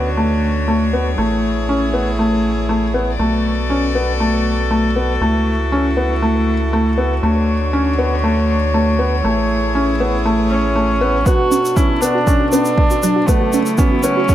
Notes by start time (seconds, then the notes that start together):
Already playing: D2 D3 D4 F#4 C#5
0.17 A3
0.68 A3
0.93 B3
1.18 A1 A3 E4 G#4
1.69 C#4
1.94 B3
2.19 A3
2.69 A3
2.94 B3
3.19 B1 A3 B3 F#4 A4 D5
3.70 C#4
3.95 B3
4.20 A3
4.71 A3
4.96 B3
5.21 C#2 A3 E4
5.72 C#4
5.97 B3
6.22 A3
6.73 A3
6.98 B3
7.23 D2 D3 A3 D4 C#5
7.73 C#4
7.99 B3
8.24 A3
8.74 A3
8.99 B3
9.24 A1 A3 E4 G#4
9.75 C#4
10.00 B3
10.26 A3
10.50 C#4
10.75 A3
11.01 B3
11.26 B2 B3 D4 F#4 A4, kick, shaker
11.39 F#4
11.51 C#4, shaker
11.65 shaker
11.76 C#4 E4 F#4, kick, shaker
11.89 F#4
12.01 B3 D4, shaker
12.15 F#4
12.27 C#4 F#5, kick, shaker
12.40 F#4
12.52 B3 C#4 D4, shaker
12.65 shaker
12.78 kick
12.90 F#4, shaker
13.03 F#3 D4, shaker
13.16 F#4
13.28 C#3 F#3 A3 B3 E4 F#4, kick, shaker
13.41 F#4
13.53 C#4, shaker
13.66 shaker
13.78 B3 C#4 F#4, kick, shaker
13.91 F#4
14.03 B3 C#4, shaker
14.17 F#4
14.29 C#4 F#5, kick, shaker